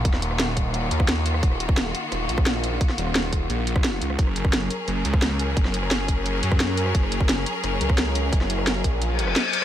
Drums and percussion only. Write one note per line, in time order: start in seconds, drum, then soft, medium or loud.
0.05 kick loud
0.05 closed hi-hat medium
0.14 cross-stick soft
0.14 snare soft
0.22 closed hi-hat medium
0.31 cross-stick soft
0.40 snare loud
0.40 closed hi-hat medium
0.57 kick medium
0.57 closed hi-hat medium
0.74 closed hi-hat medium
0.91 closed hi-hat medium
1.00 kick loud
1.00 cross-stick medium
1.08 snare loud
1.08 closed hi-hat medium
1.26 closed hi-hat medium
1.34 cross-stick medium
1.43 kick loud
1.43 closed hi-hat medium
1.52 cross-stick soft
1.60 closed hi-hat medium
1.69 kick loud
1.69 cross-stick soft
1.77 snare loud
1.77 closed hi-hat medium
1.95 closed hi-hat medium
2.12 cross-stick soft
2.12 closed hi-hat medium
2.29 closed hi-hat medium
2.38 kick loud
2.38 cross-stick medium
2.46 snare loud
2.46 closed hi-hat medium
2.64 closed hi-hat medium
2.81 kick loud
2.81 closed hi-hat medium
2.90 cross-stick soft
2.90 snare soft
2.98 closed hi-hat medium
3.07 cross-stick soft
3.15 snare loud
3.15 closed hi-hat medium
3.33 kick medium
3.33 closed hi-hat medium
3.50 closed hi-hat medium
3.67 closed hi-hat medium
3.76 kick loud
3.76 cross-stick medium
3.84 snare loud
3.84 closed hi-hat medium
4.02 closed hi-hat medium
4.10 cross-stick soft
4.19 kick loud
4.19 closed hi-hat medium
4.27 cross-stick soft
4.36 closed hi-hat medium
4.45 kick loud
4.45 cross-stick soft
4.53 snare loud
4.53 closed hi-hat medium
4.70 closed hi-hat medium
4.88 cross-stick soft
4.88 closed hi-hat medium
5.05 closed hi-hat medium
5.14 kick loud
5.14 cross-stick medium
5.22 snare loud
5.22 closed hi-hat medium
5.39 closed hi-hat medium
5.57 kick loud
5.57 closed hi-hat medium
5.65 cross-stick soft
5.65 snare soft
5.74 closed hi-hat medium
5.83 cross-stick soft
5.91 snare loud
5.91 closed hi-hat medium
6.08 kick medium
6.08 closed hi-hat medium
6.26 closed hi-hat medium
6.43 closed hi-hat medium
6.52 kick loud
6.52 cross-stick medium
6.60 snare loud
6.60 closed hi-hat medium
6.77 closed hi-hat medium
6.86 cross-stick soft
6.95 kick loud
6.95 closed hi-hat medium
7.03 cross-stick soft
7.12 closed hi-hat medium
7.21 kick loud
7.21 cross-stick soft
7.29 snare loud
7.29 closed hi-hat medium
7.46 closed hi-hat loud
7.64 cross-stick soft
7.64 closed hi-hat medium
7.81 closed hi-hat medium
7.89 kick loud
7.89 cross-stick medium
7.98 snare loud
7.98 closed hi-hat medium
8.15 closed hi-hat loud
8.33 kick loud
8.33 closed hi-hat medium
8.41 cross-stick soft
8.41 snare soft
8.50 closed hi-hat loud
8.59 cross-stick soft
8.67 snare loud
8.67 closed hi-hat medium
8.84 kick medium
8.84 closed hi-hat loud
9.02 closed hi-hat medium
9.19 closed hi-hat loud
9.27 cross-stick medium
9.36 snare loud
9.36 closed hi-hat medium
9.53 closed hi-hat loud